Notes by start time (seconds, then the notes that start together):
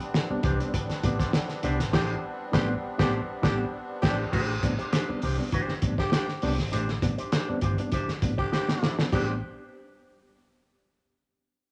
Already playing: G3 B3 C4 D4
0.00 muted clean electric guitar stroke, closed hi-hat
0.14 snare
0.29 G3 B3 C4 D4, muted clean electric guitar stroke, muted fingered electric bass stroke
0.43 C2 A2 E3 D4 G4 C5, kick, closed hi-hat
0.59 G3 B3 C4 D4, muted clean electric guitar stroke, closed hi-hat
0.73 A2 E3, muted clean electric guitar stroke, kick, closed hi-hat
0.89 muted clean electric guitar stroke, muted fingered electric bass stroke, snare, closed hi-hat
1.03 A1 G3 B3 C4 D4 G4 C5, kick, closed hi-hat
1.19 D4 G4 C5, kick, snare, closed hi-hat
1.33 muted clean electric guitar stroke, snare
1.49 muted clean electric guitar stroke, snare, closed hi-hat
1.63 C2 G3 B3 C4 D4 G4 C5, closed hi-hat
1.79 G#1, muted clean electric guitar stroke, snare, closed hi-hat
1.93 A1 A2 E3 D4 G4 C5, kick, snare, crash
2.52 A1 G3 B3 C4 D4 G4 C5, kick, snare
2.98 A1 G3 B3 C4 D4 G4 C5, kick, snare
3.42 A1 G3 B3 C4 D4 G4 C5, kick, snare
4.02 A1 C4 D4 G4 C5, kick, snare, crash
4.32 A1 A2 E3 D4 G4 C5, kick, crash
4.49 C4 D4
4.63 A1 G3 B3 C4 D4, muted clean electric guitar stroke, kick, closed hi-hat
4.78 D4 G4 C5, closed hi-hat
4.92 D4 G4 C5, snare, closed hi-hat
5.09 G3 B3 C4 D4, muted clean electric guitar stroke, muted fingered electric bass stroke
5.22 C2 A2 E3 D4 G4 C5, open hi-hat
5.38 G3 B3 C4 D4, muted clean electric guitar stroke
5.52 A2 E3 D4 G4 C5, kick, closed hi-hat
5.68 muted fingered electric bass stroke, snare
5.82 A1 G3 B3 C4 D4, muted clean electric guitar stroke, kick, closed hi-hat
5.98 D4 G4 C5, kick, snare
6.12 D4 G4 C5, snare, closed hi-hat
6.28 muted clean electric guitar stroke, snare
6.42 C2 G3 B3 C4 D4 G4 C5, open hi-hat
6.58 G#1, muted clean electric guitar stroke, snare
6.72 A1 A2 E3 D4 G4 C5, closed hi-hat
6.88 C4 D4, snare
7.02 A1 G3 B3 C4 D4, muted clean electric guitar stroke, kick, closed hi-hat
7.18 D4 G4 C5, closed hi-hat
7.32 D4 G4 C5, snare, closed hi-hat
7.48 G3 B3 C4 D4, muted clean electric guitar stroke, muted fingered electric bass stroke
7.61 G1 A2 E3 D4 G4 C5, kick, closed hi-hat
7.78 G3 B3 C4 D4, muted clean electric guitar stroke, closed hi-hat
7.92 A2 E3 D4 G4 C5, kick, closed hi-hat
8.08 muted fingered electric bass stroke, snare
8.22 A1 G3 B3 C4 D4, muted clean electric guitar stroke, kick, closed hi-hat
8.38 C4 D4 G4 C5, kick
8.52 D4 G4 C5, snare
8.68 G3 B3 C4 D4, muted clean electric guitar stroke, snare
8.82 A2 E3 D4 G4 C5, snare
8.99 G3 B3 C4 D4, snare
9.13 A1 G3 B3 C4 D4 G4 C5, kick, crash